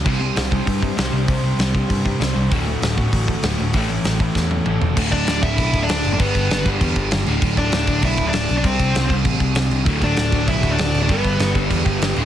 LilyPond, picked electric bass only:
\new Staff \with { instrumentName = "Picked electric bass" } { \clef bass \time 4/4 \key c \lydian \tempo 4 = 196 c,4 c,4 g,4 c,8 c,8 | c,4 c,4 g,4 c,8 c,8 | d,,4 d,,4 a,,4 d,,8 d,,8 | a,,4 a,,4 e,4 a,,8 e,,8 |
\key d \major r8 d,,8 d,,8 d,,8 b,,8 d,,8 d,,8 fis,,8 | g,,8 g,,8 g,,8 g,,8 e,8 g,,8 g,,8 d,,8 | d,,8 d,,8 d,,8 d,,8 b,,8 d,,8 d,,8 b,,8 | c,8 c,8 c,8 c,8 a,,8 c,8 c,8 c,8 |
d,,8 d,,8 d,,8 d,,8 b,,8 d,,8 d,,8 d,,8 | g,,8 g,,8 g,,8 g,,8 e,8 g,,8 g,,8 d,,8 | }